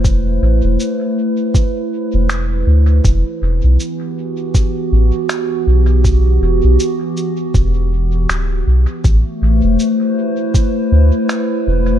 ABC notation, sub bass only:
X:1
M:4/4
L:1/16
Q:"Swing 16ths" 1/4=80
K:Ador
V:1 name="Sub bass" clef=bass
E,,,2 A,,, E,,, z6 z E,,,3 D,,2 | E,,, z E,,, B,,, z6 A,,, z3 B,,,2- | B,,,2 E,,, B,,, z4 E,,,4 z2 B,,, z | A,,, z A,,, E,,, z6 D,, z3 E,,,2 |]